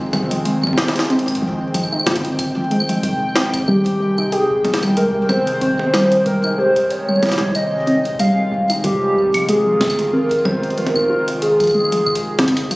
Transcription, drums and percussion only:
0.13 closed hi-hat soft
0.13 high tom medium
0.13 claves medium
0.31 closed hi-hat medium
0.45 closed hi-hat medium
0.63 kick soft
0.63 high tom soft
0.63 claves medium
0.66 kick medium
0.66 high tom soft
0.71 kick medium
0.73 kick medium
0.73 high tom medium
0.75 kick medium
0.75 snare loud
0.75 high tom medium
0.84 high tom medium
0.88 snare medium
0.88 high tom medium
0.96 snare medium
0.96 closed hi-hat medium
1.10 closed hi-hat soft
1.19 closed hi-hat soft
1.28 kick medium
1.28 closed hi-hat soft
1.28 claves soft
1.31 kick medium
1.31 closed hi-hat medium
1.37 kick medium
1.42 kick medium
1.48 kick medium
1.53 kick loud
1.74 kick loud
1.74 closed hi-hat medium
1.74 claves soft
1.83 claves soft
1.92 claves medium
1.99 claves medium
2.07 snare loud
2.07 closed hi-hat soft
2.07 high tom medium
2.16 closed hi-hat medium
2.25 closed hi-hat medium
2.39 kick loud
2.39 closed hi-hat medium
2.39 claves soft
2.71 closed hi-hat soft
2.80 claves medium
2.89 closed hi-hat soft
3.03 closed hi-hat medium
3.36 snare loud
3.36 closed hi-hat soft
3.54 kick loud
3.54 closed hi-hat medium
3.54 claves soft
3.68 claves soft
3.86 kick loud
3.86 closed hi-hat medium
4.18 claves medium
4.32 closed hi-hat medium
4.50 kick loud
4.65 closed hi-hat soft
4.65 high tom medium
4.74 snare loud
4.74 closed hi-hat medium
4.83 closed hi-hat soft
4.83 claves soft
4.97 kick loud
4.97 closed hi-hat medium
5.29 closed hi-hat soft
5.29 high tom medium
5.29 claves medium
5.47 closed hi-hat soft
5.61 kick loud
5.61 closed hi-hat medium
5.79 high tom medium
5.94 snare loud
5.94 claves soft
6.12 closed hi-hat medium
6.26 kick loud
6.26 closed hi-hat medium
6.44 claves medium
6.76 kick loud
6.76 closed hi-hat medium
6.90 closed hi-hat medium
7.09 claves soft
7.16 claves soft
7.23 snare soft
7.23 closed hi-hat soft
7.23 high tom medium
7.23 claves soft
7.26 snare medium
7.29 snare medium
7.32 snare medium
7.32 closed hi-hat medium
7.32 claves soft
7.33 snare medium
7.38 kick loud
7.38 snare loud
7.55 closed hi-hat medium
7.55 claves medium
7.87 closed hi-hat soft
8.05 kick medium
8.05 closed hi-hat soft
8.09 kick medium
8.15 kick medium
8.19 closed hi-hat medium
8.19 claves medium
8.52 kick loud
8.70 closed hi-hat soft
8.70 claves medium
8.84 closed hi-hat medium
9.16 kick medium
9.21 kick medium
9.25 kick medium
9.30 kick medium
9.34 closed hi-hat medium
9.34 claves medium
9.49 closed hi-hat medium
9.81 kick loud
9.81 snare loud
9.81 closed hi-hat soft
9.81 high tom medium
9.87 kick medium
9.87 closed hi-hat medium
9.87 claves medium
9.92 kick medium
9.99 closed hi-hat medium
10.31 kick loud
10.31 closed hi-hat medium
10.45 high tom medium
10.45 claves medium
10.63 closed hi-hat soft
10.70 closed hi-hat soft
10.78 closed hi-hat soft
10.87 closed hi-hat soft
10.87 high tom loud
10.96 kick loud
10.96 claves medium
11.28 closed hi-hat medium
11.42 closed hi-hat medium
11.60 kick loud
11.60 closed hi-hat soft
11.60 claves soft
11.64 closed hi-hat soft
11.64 claves soft
11.67 closed hi-hat soft
11.67 claves soft
11.74 claves soft
11.80 claves soft
11.85 claves soft
11.92 closed hi-hat medium
12.06 kick loud
12.06 claves medium
12.15 closed hi-hat medium
12.39 snare loud
12.39 closed hi-hat soft
12.39 high tom medium
12.48 closed hi-hat medium
12.57 closed hi-hat medium
12.71 closed hi-hat medium
12.71 claves medium

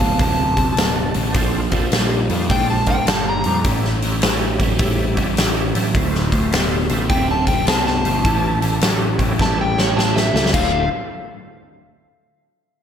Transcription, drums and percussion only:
0.19 kick loud
0.19 open hi-hat medium
0.57 kick medium
0.57 open hi-hat medium
0.77 snare loud
0.77 open hi-hat medium
1.14 open hi-hat soft
1.34 kick loud
1.34 open hi-hat medium
1.72 kick medium
1.72 open hi-hat medium
1.92 snare loud
1.92 open hi-hat medium
2.30 open hi-hat medium
2.50 kick loud
2.50 open hi-hat medium
2.86 kick medium
2.86 open hi-hat soft
3.07 snare loud
3.07 open hi-hat medium
3.44 open hi-hat medium
3.64 kick loud
3.64 open hi-hat medium
3.85 snare soft
4.02 open hi-hat medium
4.22 snare loud
4.22 open hi-hat medium
4.60 kick medium
4.60 open hi-hat medium
4.79 kick loud
4.79 open hi-hat medium
5.17 kick medium
5.17 open hi-hat medium
5.37 snare loud
5.37 open hi-hat medium
5.75 open hi-hat medium
5.95 kick loud
5.95 open hi-hat medium
6.15 snare soft
6.32 kick medium
6.32 open hi-hat medium
6.52 snare loud
6.52 open hi-hat medium
6.89 open hi-hat medium
7.10 kick loud
7.10 open hi-hat medium
7.47 kick medium
7.47 open hi-hat medium
7.67 snare loud
7.67 open hi-hat medium
7.87 snare soft
8.05 open hi-hat medium
8.25 kick loud
8.25 open hi-hat medium
8.62 open hi-hat medium
8.81 snare loud
8.81 open hi-hat medium
9.19 kick medium
9.19 open hi-hat medium
9.39 kick loud
9.39 snare medium
9.78 snare medium
9.99 snare medium
10.17 snare medium
10.36 snare medium
10.46 snare medium
10.54 kick loud
10.54 crash medium

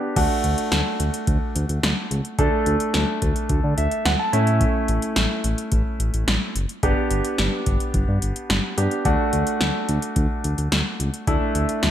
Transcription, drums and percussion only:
0.16 kick loud
0.16 closed hi-hat medium
0.16 crash medium
0.44 closed hi-hat medium
0.58 closed hi-hat medium
0.72 snare loud
0.72 closed hi-hat medium
1.00 closed hi-hat medium
1.14 closed hi-hat medium
1.27 kick medium
1.27 closed hi-hat medium
1.56 closed hi-hat medium
1.69 closed hi-hat soft
1.83 snare loud
1.83 closed hi-hat medium
2.11 closed hi-hat medium
2.25 closed hi-hat soft
2.39 kick loud
2.39 closed hi-hat medium
2.66 closed hi-hat medium
2.80 closed hi-hat medium
2.94 snare loud
2.94 closed hi-hat medium
3.22 kick medium
3.22 closed hi-hat medium
3.36 closed hi-hat medium
3.49 kick medium
3.49 closed hi-hat medium
3.78 closed hi-hat medium
3.91 closed hi-hat soft
4.05 snare loud
4.05 closed hi-hat medium
4.33 closed hi-hat medium
4.47 closed hi-hat soft
4.61 kick loud
4.61 closed hi-hat medium
4.88 closed hi-hat medium
5.02 closed hi-hat medium
5.16 snare loud
5.16 closed hi-hat medium
5.44 closed hi-hat medium
5.58 closed hi-hat medium
5.72 kick medium
5.72 closed hi-hat medium
6.00 closed hi-hat medium
6.14 closed hi-hat soft
6.28 snare loud
6.28 closed hi-hat medium
6.56 closed hi-hat medium
6.69 closed hi-hat soft
6.83 kick loud
6.83 closed hi-hat medium
7.11 closed hi-hat medium
7.25 closed hi-hat medium
7.38 snare loud
7.38 closed hi-hat medium
7.66 kick medium
7.66 closed hi-hat medium
7.80 closed hi-hat medium
7.94 kick loud
7.94 closed hi-hat medium
8.22 closed hi-hat medium
8.36 closed hi-hat soft
8.50 snare loud
8.50 closed hi-hat medium
8.78 closed hi-hat medium
8.91 closed hi-hat soft
9.05 kick loud
9.05 closed hi-hat medium
9.33 closed hi-hat medium
9.47 closed hi-hat medium
9.61 snare loud
9.61 closed hi-hat medium
9.89 closed hi-hat medium
10.02 closed hi-hat medium
10.16 kick medium
10.16 closed hi-hat medium
10.44 closed hi-hat medium
10.58 closed hi-hat medium
10.72 snare loud
10.72 closed hi-hat medium
11.00 closed hi-hat medium
11.14 closed hi-hat soft
11.27 kick loud
11.27 closed hi-hat medium
11.55 closed hi-hat medium
11.69 closed hi-hat medium
11.83 snare loud
11.83 closed hi-hat medium

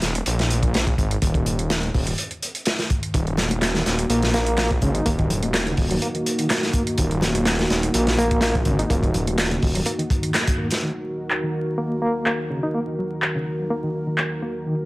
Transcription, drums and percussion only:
0.02 snare soft
0.02 closed hi-hat medium
0.15 closed hi-hat medium
0.26 closed hi-hat medium
0.26 closed hi-hat soft
0.39 snare soft
0.39 closed hi-hat soft
0.50 closed hi-hat medium
0.63 kick medium
0.63 closed hi-hat medium
0.74 snare loud
0.74 closed hi-hat soft
0.74 closed hi-hat medium
0.87 kick medium
0.87 closed hi-hat soft
0.98 kick medium
0.98 closed hi-hat medium
1.11 closed hi-hat medium
1.22 kick loud
1.22 closed hi-hat soft
1.22 closed hi-hat medium
1.34 kick loud
1.34 closed hi-hat soft
1.46 closed hi-hat medium
1.59 closed hi-hat medium
1.70 snare loud
1.70 closed hi-hat soft
1.70 closed hi-hat medium
1.83 closed hi-hat soft
1.94 kick medium
1.94 open hi-hat medium
2.07 closed hi-hat medium
2.18 closed hi-hat medium
2.31 closed hi-hat soft
2.42 closed hi-hat medium
2.55 closed hi-hat medium
2.55 closed hi-hat soft
2.65 snare loud
2.65 closed hi-hat medium
2.65 closed hi-hat soft
2.79 snare soft
2.79 closed hi-hat soft
2.90 kick medium
2.90 closed hi-hat medium
3.03 closed hi-hat medium
3.14 kick loud
3.14 closed hi-hat soft
3.14 closed hi-hat medium
3.27 closed hi-hat soft
3.37 snare medium
3.37 closed hi-hat medium
3.37 low conga medium
3.50 closed hi-hat medium
3.50 high conga medium
3.62 snare loud
3.62 clap loud
3.62 closed hi-hat soft
3.62 closed hi-hat medium
3.75 snare soft
3.75 closed hi-hat soft
3.86 snare medium
3.86 closed hi-hat medium
3.99 closed hi-hat medium
4.10 closed hi-hat soft
4.10 closed hi-hat medium
4.22 snare soft
4.22 closed hi-hat soft
4.33 snare soft
4.33 closed hi-hat medium
4.33 high conga medium
4.47 closed hi-hat medium
4.58 snare loud
4.58 clap loud
4.58 closed hi-hat soft
4.58 closed hi-hat medium
4.71 kick loud
4.71 closed hi-hat soft
4.81 kick medium
4.81 closed hi-hat medium
4.81 high conga medium
4.95 closed hi-hat medium
5.06 kick loud
5.06 closed hi-hat soft
5.06 closed hi-hat medium
5.19 kick medium
5.19 closed hi-hat soft
5.30 closed hi-hat medium
5.30 low conga medium
5.43 closed hi-hat medium
5.43 high conga medium
5.54 snare loud
5.54 clap loud
5.54 closed hi-hat medium
5.54 closed hi-hat soft
5.67 closed hi-hat soft
5.77 kick loud
5.77 open hi-hat medium
5.91 closed hi-hat medium
6.02 closed hi-hat soft
6.02 closed hi-hat medium
6.15 closed hi-hat soft
6.26 closed hi-hat medium
6.39 closed hi-hat soft
6.39 closed hi-hat medium
6.50 snare loud
6.50 clap loud
6.50 closed hi-hat soft
6.50 closed hi-hat medium
6.63 snare soft
6.63 closed hi-hat soft
6.73 kick medium
6.73 closed hi-hat medium
6.87 closed hi-hat medium
6.98 kick loud
6.98 closed hi-hat medium
7.11 closed hi-hat soft
7.21 snare soft
7.21 closed hi-hat medium
7.21 low conga medium
7.35 closed hi-hat medium
7.35 high conga medium
7.45 snare loud
7.45 clap loud
7.45 closed hi-hat soft
7.45 closed hi-hat medium
7.59 snare soft
7.59 closed hi-hat soft
7.70 snare medium
7.70 closed hi-hat medium
7.83 closed hi-hat medium
7.94 closed hi-hat soft
7.94 closed hi-hat medium
8.07 snare soft
8.07 closed hi-hat soft
8.17 closed hi-hat medium
8.17 high conga medium
8.31 kick loud
8.31 closed hi-hat medium
8.41 snare loud
8.41 clap medium
8.41 closed hi-hat medium
8.41 closed hi-hat soft
8.55 kick medium
8.55 closed hi-hat soft
8.65 kick medium
8.65 closed hi-hat medium
8.65 high conga medium
8.79 closed hi-hat medium
8.90 kick loud
8.90 closed hi-hat medium
9.03 kick medium
9.03 closed hi-hat soft
9.14 closed hi-hat medium
9.14 low conga medium
9.27 closed hi-hat medium
9.27 high conga medium
9.38 snare loud
9.38 clap loud
9.38 closed hi-hat medium
9.51 closed hi-hat soft
9.62 kick medium
9.62 open hi-hat medium
9.75 closed hi-hat medium
9.86 closed hi-hat medium
9.99 closed hi-hat soft
10.10 kick loud
10.10 closed hi-hat medium
10.23 closed hi-hat medium
10.34 snare soft
10.34 clap medium
10.34 closed hi-hat soft
10.34 closed hi-hat medium
10.47 kick medium
10.47 closed hi-hat medium
10.47 closed hi-hat soft
10.71 snare soft
10.71 closed hi-hat medium
11.30 clap medium
12.26 clap medium
13.22 clap medium
14.18 clap medium

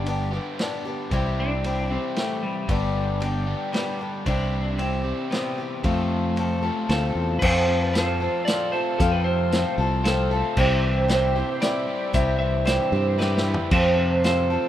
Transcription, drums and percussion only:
0.06 ride medium
0.59 snare medium
0.59 ride medium
1.11 kick loud
1.11 ride medium
1.64 ride medium
2.16 snare medium
2.16 ride medium
2.69 kick loud
2.69 ride medium
3.22 ride medium
3.74 snare medium
3.74 ride medium
4.26 kick loud
4.26 ride medium
4.79 ride medium
5.32 snare medium
5.32 ride medium
5.84 kick loud
5.84 ride medium
6.37 ride medium
6.89 snare medium
6.89 ride medium
7.42 kick loud
7.42 crash loud
7.95 snare medium
7.95 closed hi-hat medium
8.47 snare loud
8.47 closed hi-hat medium
9.00 kick loud
9.00 closed hi-hat medium
9.52 snare medium
9.52 closed hi-hat medium
10.05 snare medium
10.05 closed hi-hat medium
10.57 kick loud
10.57 crash loud
11.09 snare medium
11.09 closed hi-hat medium
11.62 snare medium
11.62 closed hi-hat medium
12.14 kick loud
12.14 closed hi-hat medium
12.67 snare medium
12.67 closed hi-hat medium
13.20 snare medium
13.37 snare medium
13.54 floor tom loud
13.71 kick loud
13.71 crash loud
14.24 snare medium
14.24 closed hi-hat medium

